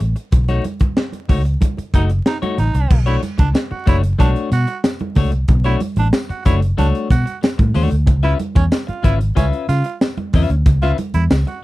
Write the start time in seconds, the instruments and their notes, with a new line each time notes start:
0.00 fingered electric bass A1, closed hi-hat
0.16 muted clean electric guitar stroke, closed hi-hat
0.32 fingered electric bass B1, muted clean electric guitar stroke, kick, closed hi-hat, muted conga, low conga
0.48 clean electric guitar A3 D#4 F#4 C#5, snare, closed hi-hat, muted conga
0.64 muted clean electric guitar stroke, closed hi-hat, high conga
0.80 muted clean electric guitar stroke, muted fingered electric bass stroke, kick, closed hi-hat, high conga
0.97 muted clean electric guitar stroke, snare
1.12 closed hi-hat, muted conga
1.29 fingered electric bass C#2, clean electric guitar A3 D#4 F#4 C#5, kick, open hi-hat, low conga
1.45 muted clean electric guitar stroke, closed hi-hat
1.61 muted clean electric guitar stroke, kick, closed hi-hat, muted conga, high conga
1.77 muted fingered electric bass stroke, muted clean electric guitar stroke, closed hi-hat, muted conga
1.94 fingered electric bass F#1, clean electric guitar A3 D#4 F#4 D#5, baritone saxophone D#4, kick, closed hi-hat
2.10 muted clean electric guitar stroke, closed hi-hat
2.26 baritone saxophone D#4, muted clean electric guitar stroke, snare
2.42 clean electric guitar A3 D#4 F#4 C#5, closed hi-hat, muted conga, high conga
2.58 fingered electric bass A1, baritone saxophone D#4, muted clean electric guitar stroke, closed hi-hat, low conga
2.74 fingered electric bass C2, muted clean electric guitar stroke, closed hi-hat
2.90 fingered electric bass B1, muted clean electric guitar stroke, kick, crash, low conga
3.06 clean electric guitar A3 D4 F#4 C#5, baritone saxophone E4, snare, closed hi-hat
3.22 muted clean electric guitar stroke, closed hi-hat, tambourine, high conga
3.38 fingered electric bass C#2, baritone saxophone D4, muted clean electric guitar stroke, kick, closed hi-hat, high conga
3.53 muted clean electric guitar stroke, snare, tambourine
3.71 baritone saxophone F#4, muted clean electric guitar stroke, muted fingered electric bass stroke, muted conga
3.86 fingered electric bass F#1, clean electric guitar A3 D4 F#4 C#5, baritone saxophone E4, kick, closed hi-hat, tambourine, low conga
4.03 muted clean electric guitar stroke, closed hi-hat
4.19 fingered electric bass B1, clean electric guitar A3 D4 F#4 C#5, baritone saxophone D4, kick, closed hi-hat, tambourine, muted conga, high conga
4.35 closed hi-hat, muted conga
4.51 fingered electric bass B2, baritone saxophone F#4, muted clean electric guitar stroke, closed hi-hat, tambourine, high conga
4.67 muted clean electric guitar stroke, closed hi-hat
4.84 muted clean electric guitar stroke, snare, tambourine, muted conga
4.99 muted clean electric guitar stroke, closed hi-hat, muted conga, high conga
5.15 fingered electric bass C#2, clean electric guitar A3 D4 F#4 C#5, kick, open hi-hat, tambourine, low conga
5.32 fingered electric bass C2, muted clean electric guitar stroke, closed hi-hat
5.48 fingered electric bass B1, muted clean electric guitar stroke, kick, closed hi-hat, low conga
5.64 clean electric guitar A3 D4 F#4 C#5, baritone saxophone E4, snare, closed hi-hat
5.80 muted clean electric guitar stroke, closed hi-hat, tambourine, high conga
5.96 fingered electric bass A1, baritone saxophone D4, muted clean electric guitar stroke, closed hi-hat, high conga
6.13 muted clean electric guitar stroke, snare, tambourine
6.29 baritone saxophone F#4, muted clean electric guitar stroke, muted fingered electric bass stroke, closed hi-hat
6.45 fingered electric bass F#1, clean electric guitar A3 D4 F#4 C#5, baritone saxophone E4, kick, closed hi-hat, tambourine, low conga
6.61 muted clean electric guitar stroke, closed hi-hat
6.77 fingered electric bass C#2, clean electric guitar A3 D4 F#4 C#5, baritone saxophone D4, closed hi-hat, tambourine, high conga
6.95 closed hi-hat
7.10 fingered electric bass B2, baritone saxophone F#4, muted clean electric guitar stroke, kick, closed hi-hat, tambourine, high conga
7.26 muted clean electric guitar stroke, closed hi-hat
7.42 muted clean electric guitar stroke, snare, tambourine, muted conga
7.58 fingered electric bass A2, muted clean electric guitar stroke, kick, closed hi-hat, muted conga, high conga
7.74 fingered electric bass D#2, clean electric guitar A3 D4 F#4 C#5, open hi-hat, tambourine, low conga
7.91 fingered electric bass D2, muted clean electric guitar stroke, closed hi-hat
8.06 fingered electric bass C#2, muted clean electric guitar stroke, kick, closed hi-hat, tambourine, muted conga, low conga
8.23 clean electric guitar C#4 F4 B4 E5, baritone saxophone E4, snare, closed hi-hat, muted conga
8.39 muted clean electric guitar stroke, closed hi-hat, high conga
8.55 fingered electric bass E2, baritone saxophone C#4, muted clean electric guitar stroke, kick, closed hi-hat, high conga
8.71 muted clean electric guitar stroke, snare, tambourine
8.87 baritone saxophone F4, muted clean electric guitar stroke, muted fingered electric bass stroke, closed hi-hat, muted conga
9.03 fingered electric bass G#1, clean electric guitar C#4 F4 B4 E5, baritone saxophone E4, kick, closed hi-hat, tambourine, low conga
9.19 muted clean electric guitar stroke, closed hi-hat
9.35 fingered electric bass C#2, clean electric guitar C#4 F4 B4 E5, baritone saxophone C#4, kick, closed hi-hat, tambourine, muted conga, high conga
9.53 closed hi-hat, muted conga
9.68 fingered electric bass C#3, baritone saxophone F4, muted clean electric guitar stroke, closed hi-hat, tambourine, high conga
9.84 muted clean electric guitar stroke, closed hi-hat
10.01 snare, tambourine, muted conga
10.17 muted clean electric guitar stroke, closed hi-hat, high conga
10.33 fingered electric bass E2, clean electric guitar C#4 F4 B4 E5, kick, open hi-hat, tambourine, low conga
10.50 fingered electric bass D2, muted clean electric guitar stroke, closed hi-hat
10.66 fingered electric bass C#2, muted clean electric guitar stroke, kick, closed hi-hat, tambourine, muted conga, low conga
10.82 clean electric guitar C#4 F4 B4 E5, baritone saxophone F4, snare, closed hi-hat, muted conga
10.98 muted clean electric guitar stroke, closed hi-hat, high conga
11.14 fingered electric bass E2, baritone saxophone E4, muted clean electric guitar stroke, closed hi-hat, high conga
11.30 fingered electric bass C#2, muted clean electric guitar stroke, snare, tambourine, muted conga
11.47 baritone saxophone F#4, muted clean electric guitar stroke, closed hi-hat, muted conga